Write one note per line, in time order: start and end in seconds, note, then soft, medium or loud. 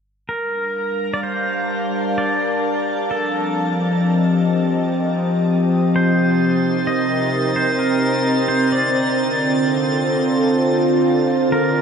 0.29 3.10 G3 medium
0.29 1.13 A#4 medium
0.41 3.10 D4 medium
0.56 4.04 F5 medium
0.63 5.91 A5 medium
0.83 3.09 A#4 medium
1.14 1.21 D5 medium
1.23 2.17 C5 medium
2.18 3.13 D5 medium
3.09 5.90 F3 medium
3.09 4.93 A4 medium
3.19 11.82 C4 medium
3.60 7.03 G4 medium
3.60 5.91 D#5 medium
5.90 8.71 C3 medium
5.90 11.55 A6 medium
5.96 6.87 C5 medium
6.35 8.71 D#4 medium
6.54 8.70 A#4 medium
6.87 7.56 D#5 medium
7.02 11.82 C5 medium
7.56 7.79 C5 medium
7.79 8.51 A#4 medium
8.48 8.72 C5 medium
8.71 11.53 D3 medium
8.71 10.08 D5 medium
9.14 11.82 F4 medium
9.51 11.52 A4 medium
11.52 11.82 A#4 medium